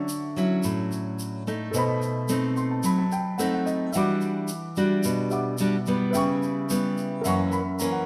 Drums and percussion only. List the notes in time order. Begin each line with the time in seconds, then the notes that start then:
0.09 shaker
0.37 shaker
0.63 shaker
0.92 shaker
1.19 shaker
1.48 shaker
1.74 shaker
2.02 shaker
2.29 shaker
2.57 shaker
2.83 shaker
3.12 shaker
3.39 shaker
3.67 shaker
3.93 shaker
4.21 shaker
4.48 shaker
4.76 shaker
5.03 shaker
5.31 shaker
5.58 shaker
5.86 shaker
6.14 shaker
6.43 shaker
6.70 shaker
6.98 shaker
7.25 shaker
7.52 shaker
7.79 shaker